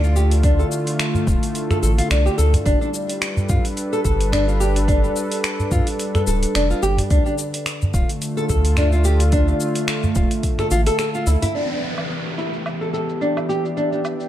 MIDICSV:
0, 0, Header, 1, 7, 480
1, 0, Start_track
1, 0, Tempo, 555556
1, 378, Time_signature, 4, 2, 24, 8
1, 12342, End_track
2, 0, Start_track
2, 0, Title_t, "Nylon-string guitar"
2, 0, Program_c, 0, 24
2, 31, Note_on_c, 0, 65, 73
2, 133, Note_off_c, 0, 65, 0
2, 137, Note_on_c, 0, 67, 92
2, 264, Note_off_c, 0, 67, 0
2, 378, Note_on_c, 0, 62, 104
2, 498, Note_off_c, 0, 62, 0
2, 511, Note_on_c, 0, 69, 70
2, 572, Note_off_c, 0, 69, 0
2, 1100, Note_on_c, 0, 65, 69
2, 1226, Note_off_c, 0, 65, 0
2, 1474, Note_on_c, 0, 69, 70
2, 1534, Note_off_c, 0, 69, 0
2, 1578, Note_on_c, 0, 69, 70
2, 1654, Note_off_c, 0, 69, 0
2, 1712, Note_on_c, 0, 65, 70
2, 1808, Note_off_c, 0, 65, 0
2, 1821, Note_on_c, 0, 62, 73
2, 1940, Note_off_c, 0, 62, 0
2, 1951, Note_on_c, 0, 67, 75
2, 2052, Note_off_c, 0, 67, 0
2, 2055, Note_on_c, 0, 69, 90
2, 2184, Note_off_c, 0, 69, 0
2, 2294, Note_on_c, 0, 62, 102
2, 2416, Note_off_c, 0, 62, 0
2, 2431, Note_on_c, 0, 62, 72
2, 2492, Note_off_c, 0, 62, 0
2, 3017, Note_on_c, 0, 65, 71
2, 3145, Note_off_c, 0, 65, 0
2, 3393, Note_on_c, 0, 69, 73
2, 3453, Note_off_c, 0, 69, 0
2, 3496, Note_on_c, 0, 69, 70
2, 3726, Note_off_c, 0, 69, 0
2, 3735, Note_on_c, 0, 62, 95
2, 3864, Note_off_c, 0, 62, 0
2, 3869, Note_on_c, 0, 65, 75
2, 3972, Note_off_c, 0, 65, 0
2, 3977, Note_on_c, 0, 67, 94
2, 4105, Note_off_c, 0, 67, 0
2, 4215, Note_on_c, 0, 62, 97
2, 4337, Note_off_c, 0, 62, 0
2, 4351, Note_on_c, 0, 62, 70
2, 4412, Note_off_c, 0, 62, 0
2, 4940, Note_on_c, 0, 65, 73
2, 5066, Note_off_c, 0, 65, 0
2, 5313, Note_on_c, 0, 69, 68
2, 5373, Note_off_c, 0, 69, 0
2, 5418, Note_on_c, 0, 69, 66
2, 5648, Note_off_c, 0, 69, 0
2, 5660, Note_on_c, 0, 62, 93
2, 5786, Note_off_c, 0, 62, 0
2, 5792, Note_on_c, 0, 65, 77
2, 5893, Note_off_c, 0, 65, 0
2, 5898, Note_on_c, 0, 67, 98
2, 6025, Note_off_c, 0, 67, 0
2, 6139, Note_on_c, 0, 62, 97
2, 6259, Note_off_c, 0, 62, 0
2, 6270, Note_on_c, 0, 62, 69
2, 6332, Note_off_c, 0, 62, 0
2, 6860, Note_on_c, 0, 65, 73
2, 6986, Note_off_c, 0, 65, 0
2, 7232, Note_on_c, 0, 69, 76
2, 7293, Note_off_c, 0, 69, 0
2, 7340, Note_on_c, 0, 69, 69
2, 7569, Note_off_c, 0, 69, 0
2, 7580, Note_on_c, 0, 62, 91
2, 7706, Note_off_c, 0, 62, 0
2, 7712, Note_on_c, 0, 65, 78
2, 7813, Note_off_c, 0, 65, 0
2, 7817, Note_on_c, 0, 67, 98
2, 7945, Note_off_c, 0, 67, 0
2, 8058, Note_on_c, 0, 62, 102
2, 8179, Note_off_c, 0, 62, 0
2, 8193, Note_on_c, 0, 62, 69
2, 8253, Note_off_c, 0, 62, 0
2, 8778, Note_on_c, 0, 65, 78
2, 8905, Note_off_c, 0, 65, 0
2, 9153, Note_on_c, 0, 69, 74
2, 9213, Note_off_c, 0, 69, 0
2, 9256, Note_on_c, 0, 65, 97
2, 9333, Note_off_c, 0, 65, 0
2, 9390, Note_on_c, 0, 69, 98
2, 9487, Note_off_c, 0, 69, 0
2, 9497, Note_on_c, 0, 69, 73
2, 9574, Note_off_c, 0, 69, 0
2, 9632, Note_on_c, 0, 65, 72
2, 9733, Note_off_c, 0, 65, 0
2, 9735, Note_on_c, 0, 64, 74
2, 9813, Note_off_c, 0, 64, 0
2, 9869, Note_on_c, 0, 64, 100
2, 9972, Note_off_c, 0, 64, 0
2, 9975, Note_on_c, 0, 62, 90
2, 10097, Note_off_c, 0, 62, 0
2, 10107, Note_on_c, 0, 62, 61
2, 10170, Note_off_c, 0, 62, 0
2, 10696, Note_on_c, 0, 64, 66
2, 10824, Note_off_c, 0, 64, 0
2, 11067, Note_on_c, 0, 69, 67
2, 11130, Note_off_c, 0, 69, 0
2, 11175, Note_on_c, 0, 69, 62
2, 11406, Note_off_c, 0, 69, 0
2, 11415, Note_on_c, 0, 62, 87
2, 11544, Note_off_c, 0, 62, 0
2, 11550, Note_on_c, 0, 64, 63
2, 11652, Note_off_c, 0, 64, 0
2, 11656, Note_on_c, 0, 67, 86
2, 11784, Note_off_c, 0, 67, 0
2, 11896, Note_on_c, 0, 62, 88
2, 12018, Note_off_c, 0, 62, 0
2, 12029, Note_on_c, 0, 62, 63
2, 12091, Note_off_c, 0, 62, 0
2, 12342, End_track
3, 0, Start_track
3, 0, Title_t, "Analog synth pad"
3, 0, Program_c, 1, 89
3, 0, Note_on_c, 1, 50, 72
3, 0, Note_on_c, 1, 57, 69
3, 0, Note_on_c, 1, 64, 84
3, 0, Note_on_c, 1, 65, 77
3, 2297, Note_off_c, 1, 57, 0
3, 2297, Note_on_c, 1, 55, 69
3, 2300, Note_off_c, 1, 50, 0
3, 2407, Note_on_c, 1, 62, 66
3, 2676, Note_on_c, 1, 71, 87
3, 2853, Note_on_c, 1, 69, 83
3, 2912, Note_off_c, 1, 64, 0
3, 3198, Note_off_c, 1, 65, 0
3, 6138, Note_off_c, 1, 55, 0
3, 6143, Note_on_c, 1, 50, 79
3, 6750, Note_on_c, 1, 57, 95
3, 6850, Note_off_c, 1, 71, 0
3, 6919, Note_off_c, 1, 69, 0
3, 7076, Note_on_c, 1, 65, 91
3, 7482, Note_on_c, 1, 76, 72
3, 7688, Note_off_c, 1, 62, 0
3, 9978, Note_off_c, 1, 65, 0
3, 9979, Note_off_c, 1, 57, 0
3, 9980, Note_on_c, 1, 52, 69
3, 9981, Note_off_c, 1, 50, 0
3, 10297, Note_on_c, 1, 67, 80
3, 10542, Note_on_c, 1, 59, 84
3, 12342, Note_off_c, 1, 52, 0
3, 12342, Note_off_c, 1, 59, 0
3, 12342, Note_off_c, 1, 67, 0
3, 12342, Note_off_c, 1, 76, 0
3, 12342, End_track
4, 0, Start_track
4, 0, Title_t, "Analog synth bass"
4, 0, Program_c, 2, 38
4, 0, Note_on_c, 2, 38, 99
4, 555, Note_off_c, 2, 38, 0
4, 1100, Note_on_c, 2, 26, 97
4, 1184, Note_off_c, 2, 26, 0
4, 1581, Note_on_c, 2, 33, 84
4, 1741, Note_off_c, 2, 33, 0
4, 1821, Note_on_c, 2, 36, 89
4, 1981, Note_off_c, 2, 36, 0
4, 2063, Note_on_c, 2, 38, 83
4, 2222, Note_off_c, 2, 38, 0
4, 2300, Note_on_c, 2, 31, 90
4, 2383, Note_off_c, 2, 31, 0
4, 3020, Note_on_c, 2, 43, 92
4, 3103, Note_off_c, 2, 43, 0
4, 3501, Note_on_c, 2, 31, 97
4, 4397, Note_off_c, 2, 31, 0
4, 4940, Note_on_c, 2, 43, 94
4, 5023, Note_off_c, 2, 43, 0
4, 5419, Note_on_c, 2, 26, 92
4, 5580, Note_off_c, 2, 26, 0
4, 5661, Note_on_c, 2, 29, 85
4, 5821, Note_off_c, 2, 29, 0
4, 5901, Note_on_c, 2, 31, 81
4, 6061, Note_off_c, 2, 31, 0
4, 6139, Note_on_c, 2, 38, 97
4, 6223, Note_off_c, 2, 38, 0
4, 6860, Note_on_c, 2, 26, 93
4, 6943, Note_off_c, 2, 26, 0
4, 7340, Note_on_c, 2, 38, 104
4, 8236, Note_off_c, 2, 38, 0
4, 8777, Note_on_c, 2, 26, 88
4, 8862, Note_off_c, 2, 26, 0
4, 9256, Note_on_c, 2, 33, 91
4, 9418, Note_off_c, 2, 33, 0
4, 9736, Note_on_c, 2, 38, 92
4, 9822, Note_off_c, 2, 38, 0
4, 12342, End_track
5, 0, Start_track
5, 0, Title_t, "Downlifter"
5, 0, Program_c, 3, 103
5, 9977, Note_on_c, 3, 60, 58
5, 12342, Note_off_c, 3, 60, 0
5, 12342, End_track
6, 0, Start_track
6, 0, Title_t, "Udu"
6, 988, Note_on_c, 9, 64, 87
6, 1075, Note_off_c, 9, 64, 0
6, 1472, Note_on_c, 9, 64, 82
6, 1559, Note_off_c, 9, 64, 0
6, 2189, Note_on_c, 9, 64, 93
6, 2275, Note_off_c, 9, 64, 0
6, 2912, Note_on_c, 9, 64, 80
6, 2998, Note_off_c, 9, 64, 0
6, 3737, Note_on_c, 9, 64, 86
6, 3824, Note_off_c, 9, 64, 0
6, 4835, Note_on_c, 9, 64, 68
6, 4922, Note_off_c, 9, 64, 0
6, 5312, Note_on_c, 9, 64, 95
6, 5399, Note_off_c, 9, 64, 0
6, 6025, Note_on_c, 9, 64, 87
6, 6112, Note_off_c, 9, 64, 0
6, 6761, Note_on_c, 9, 64, 84
6, 6848, Note_off_c, 9, 64, 0
6, 7574, Note_on_c, 9, 64, 91
6, 7660, Note_off_c, 9, 64, 0
6, 8671, Note_on_c, 9, 64, 78
6, 8757, Note_off_c, 9, 64, 0
6, 9142, Note_on_c, 9, 64, 80
6, 9228, Note_off_c, 9, 64, 0
6, 9873, Note_on_c, 9, 64, 87
6, 9960, Note_off_c, 9, 64, 0
6, 12342, End_track
7, 0, Start_track
7, 0, Title_t, "Drums"
7, 33, Note_on_c, 9, 69, 23
7, 120, Note_off_c, 9, 69, 0
7, 140, Note_on_c, 9, 69, 70
7, 227, Note_off_c, 9, 69, 0
7, 272, Note_on_c, 9, 46, 50
7, 273, Note_on_c, 9, 69, 32
7, 358, Note_off_c, 9, 46, 0
7, 359, Note_off_c, 9, 69, 0
7, 375, Note_on_c, 9, 46, 44
7, 377, Note_on_c, 9, 36, 115
7, 377, Note_on_c, 9, 69, 46
7, 462, Note_off_c, 9, 46, 0
7, 463, Note_off_c, 9, 36, 0
7, 463, Note_off_c, 9, 69, 0
7, 513, Note_on_c, 9, 69, 21
7, 600, Note_off_c, 9, 69, 0
7, 620, Note_on_c, 9, 69, 73
7, 706, Note_off_c, 9, 69, 0
7, 752, Note_on_c, 9, 46, 50
7, 754, Note_on_c, 9, 69, 33
7, 839, Note_off_c, 9, 46, 0
7, 840, Note_off_c, 9, 69, 0
7, 859, Note_on_c, 9, 26, 91
7, 859, Note_on_c, 9, 46, 38
7, 861, Note_on_c, 9, 69, 42
7, 946, Note_off_c, 9, 26, 0
7, 946, Note_off_c, 9, 46, 0
7, 947, Note_off_c, 9, 69, 0
7, 996, Note_on_c, 9, 69, 22
7, 1082, Note_off_c, 9, 69, 0
7, 1099, Note_on_c, 9, 36, 100
7, 1102, Note_on_c, 9, 69, 74
7, 1185, Note_off_c, 9, 36, 0
7, 1189, Note_off_c, 9, 69, 0
7, 1235, Note_on_c, 9, 46, 45
7, 1236, Note_on_c, 9, 69, 32
7, 1321, Note_off_c, 9, 46, 0
7, 1322, Note_off_c, 9, 69, 0
7, 1339, Note_on_c, 9, 46, 41
7, 1341, Note_on_c, 9, 69, 44
7, 1426, Note_off_c, 9, 46, 0
7, 1427, Note_off_c, 9, 69, 0
7, 1474, Note_on_c, 9, 26, 28
7, 1475, Note_on_c, 9, 69, 21
7, 1560, Note_off_c, 9, 26, 0
7, 1562, Note_off_c, 9, 69, 0
7, 1583, Note_on_c, 9, 69, 74
7, 1669, Note_off_c, 9, 69, 0
7, 1715, Note_on_c, 9, 46, 49
7, 1716, Note_on_c, 9, 69, 33
7, 1801, Note_off_c, 9, 46, 0
7, 1803, Note_off_c, 9, 69, 0
7, 1822, Note_on_c, 9, 26, 86
7, 1822, Note_on_c, 9, 46, 40
7, 1823, Note_on_c, 9, 69, 43
7, 1908, Note_off_c, 9, 26, 0
7, 1908, Note_off_c, 9, 46, 0
7, 1909, Note_off_c, 9, 69, 0
7, 1959, Note_on_c, 9, 69, 22
7, 2045, Note_off_c, 9, 69, 0
7, 2062, Note_on_c, 9, 69, 72
7, 2149, Note_off_c, 9, 69, 0
7, 2194, Note_on_c, 9, 46, 53
7, 2196, Note_on_c, 9, 69, 34
7, 2281, Note_off_c, 9, 46, 0
7, 2282, Note_off_c, 9, 69, 0
7, 2300, Note_on_c, 9, 36, 111
7, 2300, Note_on_c, 9, 46, 41
7, 2301, Note_on_c, 9, 69, 44
7, 2386, Note_off_c, 9, 36, 0
7, 2386, Note_off_c, 9, 46, 0
7, 2388, Note_off_c, 9, 69, 0
7, 2435, Note_on_c, 9, 69, 21
7, 2522, Note_off_c, 9, 69, 0
7, 2541, Note_on_c, 9, 69, 78
7, 2627, Note_off_c, 9, 69, 0
7, 2674, Note_on_c, 9, 46, 50
7, 2675, Note_on_c, 9, 69, 32
7, 2760, Note_off_c, 9, 46, 0
7, 2762, Note_off_c, 9, 69, 0
7, 2780, Note_on_c, 9, 26, 93
7, 2780, Note_on_c, 9, 46, 40
7, 2781, Note_on_c, 9, 69, 39
7, 2866, Note_off_c, 9, 26, 0
7, 2866, Note_off_c, 9, 46, 0
7, 2868, Note_off_c, 9, 69, 0
7, 2914, Note_on_c, 9, 69, 23
7, 3001, Note_off_c, 9, 69, 0
7, 3017, Note_on_c, 9, 69, 74
7, 3019, Note_on_c, 9, 36, 96
7, 3104, Note_off_c, 9, 69, 0
7, 3106, Note_off_c, 9, 36, 0
7, 3153, Note_on_c, 9, 46, 47
7, 3154, Note_on_c, 9, 69, 31
7, 3239, Note_off_c, 9, 46, 0
7, 3241, Note_off_c, 9, 69, 0
7, 3259, Note_on_c, 9, 46, 43
7, 3260, Note_on_c, 9, 69, 42
7, 3345, Note_off_c, 9, 46, 0
7, 3346, Note_off_c, 9, 69, 0
7, 3395, Note_on_c, 9, 69, 20
7, 3482, Note_off_c, 9, 69, 0
7, 3499, Note_on_c, 9, 36, 59
7, 3500, Note_on_c, 9, 69, 76
7, 3585, Note_off_c, 9, 36, 0
7, 3586, Note_off_c, 9, 69, 0
7, 3633, Note_on_c, 9, 46, 53
7, 3635, Note_on_c, 9, 69, 32
7, 3720, Note_off_c, 9, 46, 0
7, 3721, Note_off_c, 9, 69, 0
7, 3743, Note_on_c, 9, 26, 91
7, 3743, Note_on_c, 9, 46, 41
7, 3744, Note_on_c, 9, 69, 40
7, 3829, Note_off_c, 9, 26, 0
7, 3829, Note_off_c, 9, 46, 0
7, 3830, Note_off_c, 9, 69, 0
7, 3876, Note_on_c, 9, 69, 22
7, 3962, Note_off_c, 9, 69, 0
7, 3981, Note_on_c, 9, 69, 68
7, 4067, Note_off_c, 9, 69, 0
7, 4114, Note_on_c, 9, 46, 56
7, 4116, Note_on_c, 9, 69, 34
7, 4201, Note_off_c, 9, 46, 0
7, 4202, Note_off_c, 9, 69, 0
7, 4218, Note_on_c, 9, 36, 109
7, 4221, Note_on_c, 9, 46, 45
7, 4222, Note_on_c, 9, 69, 43
7, 4304, Note_off_c, 9, 36, 0
7, 4307, Note_off_c, 9, 46, 0
7, 4309, Note_off_c, 9, 69, 0
7, 4356, Note_on_c, 9, 69, 20
7, 4442, Note_off_c, 9, 69, 0
7, 4459, Note_on_c, 9, 69, 73
7, 4546, Note_off_c, 9, 69, 0
7, 4593, Note_on_c, 9, 46, 57
7, 4594, Note_on_c, 9, 69, 31
7, 4679, Note_off_c, 9, 46, 0
7, 4680, Note_off_c, 9, 69, 0
7, 4700, Note_on_c, 9, 26, 88
7, 4700, Note_on_c, 9, 46, 40
7, 4702, Note_on_c, 9, 69, 40
7, 4787, Note_off_c, 9, 26, 0
7, 4787, Note_off_c, 9, 46, 0
7, 4788, Note_off_c, 9, 69, 0
7, 4836, Note_on_c, 9, 69, 20
7, 4922, Note_off_c, 9, 69, 0
7, 4938, Note_on_c, 9, 36, 92
7, 4938, Note_on_c, 9, 69, 74
7, 5025, Note_off_c, 9, 36, 0
7, 5025, Note_off_c, 9, 69, 0
7, 5071, Note_on_c, 9, 46, 51
7, 5072, Note_on_c, 9, 69, 29
7, 5157, Note_off_c, 9, 46, 0
7, 5159, Note_off_c, 9, 69, 0
7, 5179, Note_on_c, 9, 46, 44
7, 5181, Note_on_c, 9, 69, 43
7, 5266, Note_off_c, 9, 46, 0
7, 5267, Note_off_c, 9, 69, 0
7, 5312, Note_on_c, 9, 26, 27
7, 5314, Note_on_c, 9, 69, 20
7, 5399, Note_off_c, 9, 26, 0
7, 5400, Note_off_c, 9, 69, 0
7, 5418, Note_on_c, 9, 69, 67
7, 5505, Note_off_c, 9, 69, 0
7, 5553, Note_on_c, 9, 46, 55
7, 5554, Note_on_c, 9, 69, 31
7, 5639, Note_off_c, 9, 46, 0
7, 5640, Note_off_c, 9, 69, 0
7, 5660, Note_on_c, 9, 26, 86
7, 5660, Note_on_c, 9, 46, 41
7, 5662, Note_on_c, 9, 69, 40
7, 5747, Note_off_c, 9, 26, 0
7, 5747, Note_off_c, 9, 46, 0
7, 5748, Note_off_c, 9, 69, 0
7, 5794, Note_on_c, 9, 69, 22
7, 5880, Note_off_c, 9, 69, 0
7, 5901, Note_on_c, 9, 69, 67
7, 5988, Note_off_c, 9, 69, 0
7, 6035, Note_on_c, 9, 46, 57
7, 6036, Note_on_c, 9, 69, 31
7, 6121, Note_off_c, 9, 46, 0
7, 6123, Note_off_c, 9, 69, 0
7, 6138, Note_on_c, 9, 46, 43
7, 6139, Note_on_c, 9, 36, 106
7, 6140, Note_on_c, 9, 69, 43
7, 6225, Note_off_c, 9, 46, 0
7, 6226, Note_off_c, 9, 36, 0
7, 6226, Note_off_c, 9, 69, 0
7, 6273, Note_on_c, 9, 69, 21
7, 6359, Note_off_c, 9, 69, 0
7, 6379, Note_on_c, 9, 69, 77
7, 6465, Note_off_c, 9, 69, 0
7, 6514, Note_on_c, 9, 46, 58
7, 6516, Note_on_c, 9, 69, 31
7, 6601, Note_off_c, 9, 46, 0
7, 6602, Note_off_c, 9, 69, 0
7, 6619, Note_on_c, 9, 26, 97
7, 6619, Note_on_c, 9, 46, 44
7, 6620, Note_on_c, 9, 69, 40
7, 6705, Note_off_c, 9, 26, 0
7, 6705, Note_off_c, 9, 46, 0
7, 6706, Note_off_c, 9, 69, 0
7, 6754, Note_on_c, 9, 69, 21
7, 6840, Note_off_c, 9, 69, 0
7, 6859, Note_on_c, 9, 36, 93
7, 6861, Note_on_c, 9, 69, 70
7, 6945, Note_off_c, 9, 36, 0
7, 6947, Note_off_c, 9, 69, 0
7, 6993, Note_on_c, 9, 46, 49
7, 6995, Note_on_c, 9, 69, 30
7, 7080, Note_off_c, 9, 46, 0
7, 7081, Note_off_c, 9, 69, 0
7, 7099, Note_on_c, 9, 46, 45
7, 7101, Note_on_c, 9, 69, 43
7, 7186, Note_off_c, 9, 46, 0
7, 7187, Note_off_c, 9, 69, 0
7, 7237, Note_on_c, 9, 69, 20
7, 7323, Note_off_c, 9, 69, 0
7, 7339, Note_on_c, 9, 36, 55
7, 7339, Note_on_c, 9, 69, 70
7, 7426, Note_off_c, 9, 36, 0
7, 7426, Note_off_c, 9, 69, 0
7, 7471, Note_on_c, 9, 46, 55
7, 7472, Note_on_c, 9, 69, 30
7, 7557, Note_off_c, 9, 46, 0
7, 7559, Note_off_c, 9, 69, 0
7, 7575, Note_on_c, 9, 26, 95
7, 7575, Note_on_c, 9, 46, 45
7, 7576, Note_on_c, 9, 69, 39
7, 7661, Note_off_c, 9, 26, 0
7, 7661, Note_off_c, 9, 46, 0
7, 7663, Note_off_c, 9, 69, 0
7, 7710, Note_on_c, 9, 69, 21
7, 7796, Note_off_c, 9, 69, 0
7, 7814, Note_on_c, 9, 69, 69
7, 7901, Note_off_c, 9, 69, 0
7, 7949, Note_on_c, 9, 46, 60
7, 7951, Note_on_c, 9, 69, 31
7, 8036, Note_off_c, 9, 46, 0
7, 8037, Note_off_c, 9, 69, 0
7, 8054, Note_on_c, 9, 46, 46
7, 8055, Note_on_c, 9, 69, 43
7, 8058, Note_on_c, 9, 36, 111
7, 8140, Note_off_c, 9, 46, 0
7, 8141, Note_off_c, 9, 69, 0
7, 8144, Note_off_c, 9, 36, 0
7, 8190, Note_on_c, 9, 69, 21
7, 8277, Note_off_c, 9, 69, 0
7, 8297, Note_on_c, 9, 69, 76
7, 8384, Note_off_c, 9, 69, 0
7, 8428, Note_on_c, 9, 46, 58
7, 8429, Note_on_c, 9, 69, 29
7, 8514, Note_off_c, 9, 46, 0
7, 8516, Note_off_c, 9, 69, 0
7, 8535, Note_on_c, 9, 26, 98
7, 8535, Note_on_c, 9, 46, 47
7, 8537, Note_on_c, 9, 69, 43
7, 8622, Note_off_c, 9, 26, 0
7, 8622, Note_off_c, 9, 46, 0
7, 8623, Note_off_c, 9, 69, 0
7, 8668, Note_on_c, 9, 69, 21
7, 8755, Note_off_c, 9, 69, 0
7, 8773, Note_on_c, 9, 69, 76
7, 8777, Note_on_c, 9, 36, 103
7, 8860, Note_off_c, 9, 69, 0
7, 8864, Note_off_c, 9, 36, 0
7, 8908, Note_on_c, 9, 46, 54
7, 8909, Note_on_c, 9, 69, 32
7, 8994, Note_off_c, 9, 46, 0
7, 8996, Note_off_c, 9, 69, 0
7, 9015, Note_on_c, 9, 46, 48
7, 9016, Note_on_c, 9, 36, 52
7, 9016, Note_on_c, 9, 69, 43
7, 9101, Note_off_c, 9, 46, 0
7, 9102, Note_off_c, 9, 36, 0
7, 9102, Note_off_c, 9, 69, 0
7, 9148, Note_on_c, 9, 26, 30
7, 9150, Note_on_c, 9, 69, 20
7, 9235, Note_off_c, 9, 26, 0
7, 9236, Note_off_c, 9, 69, 0
7, 9254, Note_on_c, 9, 69, 71
7, 9340, Note_off_c, 9, 69, 0
7, 9387, Note_on_c, 9, 46, 56
7, 9389, Note_on_c, 9, 69, 31
7, 9474, Note_off_c, 9, 46, 0
7, 9475, Note_off_c, 9, 69, 0
7, 9493, Note_on_c, 9, 26, 97
7, 9493, Note_on_c, 9, 46, 41
7, 9494, Note_on_c, 9, 69, 41
7, 9579, Note_off_c, 9, 26, 0
7, 9579, Note_off_c, 9, 46, 0
7, 9581, Note_off_c, 9, 69, 0
7, 9629, Note_on_c, 9, 69, 22
7, 9715, Note_off_c, 9, 69, 0
7, 9735, Note_on_c, 9, 69, 66
7, 9822, Note_off_c, 9, 69, 0
7, 9871, Note_on_c, 9, 46, 59
7, 9873, Note_on_c, 9, 69, 31
7, 9958, Note_off_c, 9, 46, 0
7, 9959, Note_off_c, 9, 69, 0
7, 9976, Note_on_c, 9, 69, 39
7, 10062, Note_off_c, 9, 69, 0
7, 10108, Note_on_c, 9, 69, 18
7, 10195, Note_off_c, 9, 69, 0
7, 10218, Note_on_c, 9, 69, 67
7, 10304, Note_off_c, 9, 69, 0
7, 10349, Note_on_c, 9, 77, 66
7, 10350, Note_on_c, 9, 69, 29
7, 10435, Note_off_c, 9, 77, 0
7, 10437, Note_off_c, 9, 69, 0
7, 10456, Note_on_c, 9, 69, 40
7, 10543, Note_off_c, 9, 69, 0
7, 10591, Note_on_c, 9, 69, 19
7, 10677, Note_off_c, 9, 69, 0
7, 10696, Note_on_c, 9, 69, 66
7, 10783, Note_off_c, 9, 69, 0
7, 10830, Note_on_c, 9, 69, 27
7, 10917, Note_off_c, 9, 69, 0
7, 10937, Note_on_c, 9, 77, 69
7, 10938, Note_on_c, 9, 69, 37
7, 11023, Note_off_c, 9, 77, 0
7, 11025, Note_off_c, 9, 69, 0
7, 11073, Note_on_c, 9, 69, 17
7, 11159, Note_off_c, 9, 69, 0
7, 11181, Note_on_c, 9, 69, 67
7, 11268, Note_off_c, 9, 69, 0
7, 11312, Note_on_c, 9, 69, 28
7, 11399, Note_off_c, 9, 69, 0
7, 11418, Note_on_c, 9, 69, 37
7, 11505, Note_off_c, 9, 69, 0
7, 11552, Note_on_c, 9, 77, 68
7, 11553, Note_on_c, 9, 69, 20
7, 11639, Note_off_c, 9, 77, 0
7, 11640, Note_off_c, 9, 69, 0
7, 11661, Note_on_c, 9, 69, 60
7, 11747, Note_off_c, 9, 69, 0
7, 11796, Note_on_c, 9, 69, 30
7, 11883, Note_off_c, 9, 69, 0
7, 11899, Note_on_c, 9, 69, 39
7, 11986, Note_off_c, 9, 69, 0
7, 12033, Note_on_c, 9, 69, 20
7, 12120, Note_off_c, 9, 69, 0
7, 12137, Note_on_c, 9, 77, 64
7, 12138, Note_on_c, 9, 69, 75
7, 12223, Note_off_c, 9, 77, 0
7, 12225, Note_off_c, 9, 69, 0
7, 12271, Note_on_c, 9, 69, 31
7, 12342, Note_off_c, 9, 69, 0
7, 12342, End_track
0, 0, End_of_file